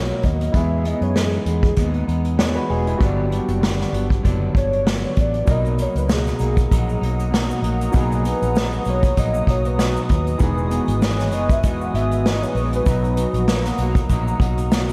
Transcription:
Already playing: B1 B2 F#3 A#3 B3 D#4 A#4 C#5
0.10 closed hi-hat
0.23 D#2 F#3 A#3 D#4 D#5, kick, closed hi-hat
0.41 closed hi-hat
0.52 E2 E3 G#3 B3 E4 E5, kick, closed hi-hat
0.57 G#4
0.84 G#3 B3 D#4 D#5, closed hi-hat
1.01 F#2 C#5, closed hi-hat
1.14 E3 G#3 B3 D#4 G#4, snare
1.33 closed hi-hat
1.46 E2 G#3 B3 D#4, closed hi-hat
1.63 kick, closed hi-hat
1.76 D#2 G#3 B3 D#4, kick, closed hi-hat
1.94 closed hi-hat
2.07 E2 G#3 B3 D#4, closed hi-hat
2.25 closed hi-hat
2.37 E3 G#3 B3 D#4 G#4 C#5, snare
2.55 F#4 B4, closed hi-hat
2.68 E1 G#3 B3 D#4 G#4, open hi-hat
2.87 B3 E4, closed hi-hat
2.98 G1 G2 D3 F#3 B3 D4 F#4, kick, closed hi-hat
3.02 G3 D4
3.28 F#3 B3 D4, closed hi-hat
3.48 F#1, closed hi-hat
3.60 D3 F#3 B3 D4, snare
3.81 snare
3.92 G1 F#3 B3 D4, closed hi-hat
4.10 kick, closed hi-hat
4.23 F#1 D3 F#3 B3 D4, kick, closed hi-hat
4.55 G1 F#3 B3 D4 C#5, kick, closed hi-hat
4.73 closed hi-hat
4.85 D3 F#3 B3 D4, snare
5.04 closed hi-hat
5.16 A1 F#3 B3 D4 D5, kick, closed hi-hat
5.34 closed hi-hat
5.45 B1 B2 F#3 A#3 B3 D#4 F#4 F#5 A#5 D#6, kick, closed hi-hat, shaker
5.49 D#4 A#4 D#5
5.65 closed hi-hat, shaker
5.77 F#3 A#3 D#4, closed hi-hat, shaker
5.82 C#5
5.95 C#2 B4, closed hi-hat, shaker
6.08 B2 F#3 A#3 D#4, snare, shaker
6.12 G#4
6.27 snare, closed hi-hat, shaker
6.39 B1 F#3 A#3 D#4, closed hi-hat, shaker
6.57 kick, closed hi-hat, shaker
6.71 A#1 F#3 A#3 D#4, kick, closed hi-hat, shaker
6.89 closed hi-hat, shaker
7.01 B1 F#3 A#3 D#4, closed hi-hat
7.20 closed hi-hat, shaker
7.31 B2 F#3 A#3 D#4, snare, shaker
7.50 closed hi-hat, shaker
7.62 A#1 F#3 A#3 D#4, closed hi-hat, shaker
7.81 closed hi-hat, shaker
7.92 B1 B2 F#3 A#3 B3 D#4, kick, closed hi-hat, shaker
7.97 G#4
8.03 A#5
8.12 closed hi-hat, shaker
8.23 F#3 D#4 B4, closed hi-hat, shaker
8.42 A#1, closed hi-hat, shaker
8.56 F#3 D#4, snare, shaker
8.73 closed hi-hat, shaker
8.85 B1 A#3 D#4, closed hi-hat, shaker
8.90 F#3 C#5
9.03 kick, closed hi-hat, shaker
9.17 A#1 F#3 A#3 D#4 D#5, kick, closed hi-hat, shaker
9.34 shaker
9.46 B1 F#3 A#3 D#4 C#5, kick, closed hi-hat
9.65 B4, closed hi-hat, shaker
9.77 B2 F#3 D#4 B4, snare, shaker
9.96 closed hi-hat, shaker
10.08 D#2 F#3 D#4, kick, closed hi-hat, shaker
10.27 closed hi-hat, shaker
10.38 E1 D#3 E3 G#3 B3 D#4 B4 G#5, kick, closed hi-hat, shaker
10.43 G#4
10.58 shaker
10.69 G#3 B3 D#4, closed hi-hat, shaker
10.88 G#1, closed hi-hat, shaker
11.01 E3 G#3 B3 D#4 C#5, snare, shaker
11.20 snare, closed hi-hat, shaker
11.32 F#1 G#3 B3 D#4 D#5, closed hi-hat, shaker
11.49 E5, kick, closed hi-hat, shaker
11.63 E1 E3 G#3 B3 D#4 D#5, kick, closed hi-hat, shaker
11.81 F#5, shaker
11.94 G#1 G#3 B3 E5, closed hi-hat
12.11 closed hi-hat, shaker
12.25 E3 G#3 B3 D#4 D#5, snare, shaker
12.42 C#5, shaker
12.55 A#1 B3 D#4 B4, open hi-hat, shaker
12.60 G#3
12.73 B4, closed hi-hat, shaker
12.83 B1 B2 F#3 B3 D#4, kick, closed hi-hat, shaker
12.87 F#3 D#4 F#5 A#5
13.04 closed hi-hat, shaker
13.17 F#3 D#4, closed hi-hat, shaker
13.33 A#1, closed hi-hat, shaker
13.48 F#3 A#3 D#4, snare, shaker
13.65 snare, shaker
13.78 B1 A#3 D#4, closed hi-hat, shaker
13.83 F#3
13.95 kick, closed hi-hat, shaker
14.09 A#1 F#3 A#3 D#4, kick, closed hi-hat, shaker
14.28 shaker
14.39 B1 A#3 D#4, kick, closed hi-hat
14.44 F#3
14.57 closed hi-hat, shaker
14.72 B2 F#3 A#3 D#4, snare, shaker
14.88 closed hi-hat, shaker

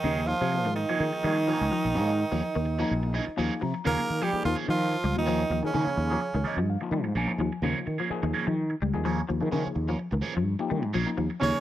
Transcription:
Already playing: D#3 D#4
0.04 D#2 C#3 F3 A#3 C#4 D#4 G#4
0.18 F3 A#3 D#4 G#4
0.27 F3 F4, muted clean electric guitar stroke
0.41 C3 F3 A#3 C#4 G#4
0.51 F3 A#3 D#4 G#4, muted clean electric guitar stroke
0.65 G#2 D#3, muted clean electric guitar stroke
0.74 D#3 D#4, muted clean electric guitar stroke
0.89 F3 A#3 C#4 G#4
1.00 D#3 F3 A#3 D#4 G#4
1.13 muted clean electric guitar stroke
1.23 D#3 F3 G3 A#3 C#4 G#4
1.38 muted clean electric guitar stroke
1.48 F3 A#3 C#4 G#4
1.61 C#2
1.71 F3, muted clean electric guitar stroke
1.85 A#1, muted clean electric guitar stroke
1.95 G#2 F3 A#3 C#4, muted clean electric guitar stroke
2.19 muted clean electric guitar stroke
2.32 D#2 F3 A#3 C#4 G#4
2.42 muted clean electric guitar stroke
2.55 D#2 D#3, muted clean electric guitar stroke
2.65 muted clean electric guitar stroke
2.79 F3 A#3 C#4 D#4 G#4 A#4
2.91 A#1
3.03 muted clean electric guitar stroke
3.14 F3 A#3 C#4 G#4 D#5, muted clean electric guitar stroke
3.26 muted clean electric guitar stroke, muted fretless electric bass stroke
3.37 D#2 F3 A#3 C#4 D#4 G#4 F5
3.61 C3 F3 A#5, muted clean electric guitar stroke
3.74 muted clean electric guitar stroke
3.85 D#2 C#3 F3 A#3 C#4 D#4 G#4 A#4
4.09 D#3, muted clean electric guitar stroke
4.21 F3 G3 A#3 C#4 G4 G#4
4.32 F3 A#3 D#4 G#4, muted clean electric guitar stroke, muted fretless electric bass stroke
4.44 D#2 D#3 F3 F4, muted clean electric guitar stroke
4.55 F3 C#4 G#4, muted clean electric guitar stroke
4.68 D#3 F3 F4, muted clean electric guitar stroke
4.92 muted clean electric guitar stroke
5.04 C#2 G3
5.15 D#2 D#3 F3 A#3 D#4 F4, muted clean electric guitar stroke
5.25 F3 A#3 C#4 G#4
5.50 D#2 F3, muted clean electric guitar stroke
5.63 C#3 D#3 F3 A#3 C#4 D#4 G#4, muted clean electric guitar stroke
5.74 C#3 D#3 F3 A#3 C#4 G#4
5.87 muted fretless electric bass stroke
5.97 D#2, muted clean electric guitar stroke
6.10 F3 A#3 C#4 G#4
6.21 muted clean electric guitar stroke
6.34 C#2 D#3, muted clean electric guitar stroke
6.44 F3 A#3 C#4 G#4 D#5, muted fretless electric bass stroke
6.57 G2 F3, muted clean electric guitar stroke
6.70 F5
6.81 F3 A#3 D#4 F4, muted clean electric guitar stroke
6.91 D#3 G3
7.03 G#2, muted clean electric guitar stroke
7.15 A#1 F3 A#3 C#4 G#5, muted clean electric guitar stroke
7.27 F3 A#3 D#4 G#4
7.38 D#2 F3, muted clean electric guitar stroke
7.52 muted clean electric guitar stroke
7.62 D#2 C#3 F3 A#3 C#4 D#4 F4 G#4
7.86 D#3, muted clean electric guitar stroke
7.98 F3 A#3 C#4 G#4
8.10 F3 A#3 D#4 G#4, muted clean electric guitar stroke, muted fretless electric bass stroke
8.23 D#2 D#3, muted clean electric guitar stroke
8.34 F3 A#3 C#4 G#4
8.46 D#3 F3, muted clean electric guitar stroke
8.70 muted clean electric guitar stroke
8.82 C#2 G3
8.94 D#2 F3 A#3 D#4 G#4, muted clean electric guitar stroke
9.05 F3 A#3 C#4 G#4
9.28 D#2 F3, muted clean electric guitar stroke
9.40 D#3 F3 A#3 D#4 G#4, muted clean electric guitar stroke
9.52 C#3 D#3 F3 C#4 G#4, muted clean electric guitar stroke
9.66 muted fretless electric bass stroke
9.75 D#2, muted clean electric guitar stroke
9.88 F3 A#3 C#4
9.99 muted clean electric guitar stroke
10.11 C#2 D#3, muted clean electric guitar stroke
10.21 F3 A#3 C#4 G#4
10.35 G2 F3, muted clean electric guitar stroke
10.59 F3 A#3 D#4 G4, muted clean electric guitar stroke
10.70 D#3 G3
10.83 G#2, muted clean electric guitar stroke
10.93 A#1 F3 A#3 C#4 G#4
11.06 F3 A#3 D#4 A#4
11.17 D#2 F3, muted clean electric guitar stroke
11.30 muted clean electric guitar stroke
11.40 D#2 C#3 F3 A#3 C#4 D#4 G#4 C#5

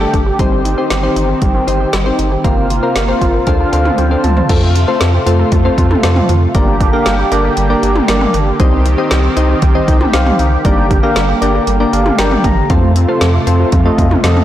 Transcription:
Already playing: D3 A3 G4
0.01 A3 D4 G4 A4
0.14 G1 D4, kick, closed hi-hat
0.26 G4
0.39 G1 D#3 G3 C4 D#4 G4 C5, kick, closed hi-hat
0.52 C4
0.65 D#4, closed hi-hat
0.78 C4 D#4 G4 C5
0.90 G1 G3, snare, closed hi-hat
1.03 C4 D#4 G4 C5
1.16 G1 D#4, closed hi-hat
1.29 G4
1.42 G1 G3, kick, closed hi-hat
1.55 C4
1.67 G1 C4 D#4 G4 C5, closed hi-hat
1.80 G4
1.93 G1 G3, snare, closed hi-hat
2.06 C4 D#4 G4 C5
2.19 G1 D#4, closed hi-hat
2.31 G4
2.44 G1 C3 A#3 C4 F4 A#4 C5, kick, closed hi-hat
2.57 C4
2.70 F4, closed hi-hat
2.83 C4 F4 A#4 C5
2.96 G1 A#3, snare, closed hi-hat
3.08 C4 F4 A#4 C5
3.21 G1 F4, kick, closed hi-hat
3.34 A#4
3.47 D2 D3 C4 D4 F4 A4 C5, kick, closed hi-hat
3.60 D4
3.73 D2 D4 F4 A4 C5 F5, closed hi-hat
3.85 C5, mid tom
3.98 D2 C4 G5, closed hi-hat, high tom
4.11 D4 F4 A4 C5
4.24 D2 F4 A5, closed hi-hat, mid tom
4.37 C5, floor tom
4.49 F2 C3 A3 C4 F4 A4 C5, kick, closed hi-hat, crash
4.62 C4
4.75 F4, closed hi-hat
4.88 A3 C4 F4 A4 C5
5.01 F2 A3, snare, closed hi-hat
5.14 C4
5.26 F2 A3 C4 F4 A4 C5, closed hi-hat
5.39 A4
5.52 F2 A3, kick, closed hi-hat
5.65 A3 C4 F4 A4 C5
5.78 F2 F4, kick, closed hi-hat
5.91 A4, mid tom
6.03 F2 A3 C4 F4 A4 C5, snare, closed hi-hat
6.16 C4, mid tom
6.29 F2 F4, closed hi-hat
6.55 G1 D3 G3 A#3 D4 G4 A#4 D5, kick, closed hi-hat
6.68 A#3
6.80 D4, kick, closed hi-hat
6.93 A#3 D4 G4 A#4 F5
7.06 G1 G3, snare, closed hi-hat
7.19 A#3
7.32 G1 A#3 D4 G4 A#4 D5, closed hi-hat
7.44 G4
7.57 G1 G3, closed hi-hat
7.70 A#3 D4 G4 A#4 D5
7.83 G1 D4, closed hi-hat
7.96 G4, mid tom
8.08 G1 G3 A#3 D4 G4 A#4 D5, snare, closed hi-hat
8.21 A#3, mid tom
8.34 G1 D4, closed hi-hat
8.60 C2 D#3 G3 C4 D#4 G4 C5 D#5, kick, closed hi-hat
8.73 C4
8.86 D#4, closed hi-hat
8.98 C4 D#4 G4 C5 D#5
9.11 C2 G3, snare, closed hi-hat
9.24 C4
9.37 C2 C4 D#4 G4 C5 D#5, closed hi-hat
9.50 G4
9.62 C2 G3, kick, closed hi-hat
9.75 C4 D#4 G4 C5 D#5
9.88 C2 D#4, kick, closed hi-hat
10.01 G4, mid tom
10.13 C2 G3 C4 D#4 G4 C5 F5, snare, closed hi-hat
10.26 C4, mid tom
10.39 C2 D#4, closed hi-hat
10.65 G1 D3 G3 A#3 D4 G4 A#4 D5, kick, closed hi-hat
10.78 A#3
10.91 D4, kick, closed hi-hat
11.03 A#3 D4 G4 A#4 F5
11.16 G1 G3, snare, closed hi-hat
11.29 A#3
11.42 G1 A#3 D4 G4 A#4 D5, closed hi-hat
11.55 G4
11.67 G1 G3, closed hi-hat
11.80 A#3 D4 G4 A#4 D5
11.93 G1 D4 F5, closed hi-hat
12.06 G4, mid tom
12.19 G1 G3 A#3 D4 G4 A#4 D5 G5, snare, closed hi-hat
12.31 A#3, mid tom
12.44 G1 D4 A#5, kick, closed hi-hat, mid tom
12.70 F2 C3 F3 A3 C4 F4 A4 C5, kick, closed hi-hat
12.83 A3
12.96 C4, closed hi-hat
13.08 A3 C4 F4 A4 C5
13.21 F2 F3, snare, closed hi-hat
13.34 A3
13.47 F2 A3 C4 F4 A4 C5, closed hi-hat
13.60 F4
13.72 F2 F3, kick, closed hi-hat
13.86 A3 C4 F4 A4 D#5
13.98 F2 C4, kick, closed hi-hat
14.11 F4, mid tom
14.24 F2 F3 A3 C4 F4 A4 D#5, snare, closed hi-hat
14.37 A3, mid tom

